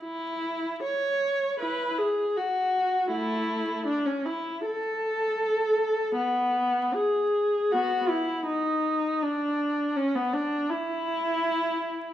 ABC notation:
X:1
M:4/4
L:1/16
Q:1/4=80
K:Emix
V:1 name="Viola"
E4 c4 [EB]2 G2 F4 | [A,E]4 D C E2 A8 | B,4 G4 [B,F]2 E2 ^D4 | D4 C B, D2 E8 |]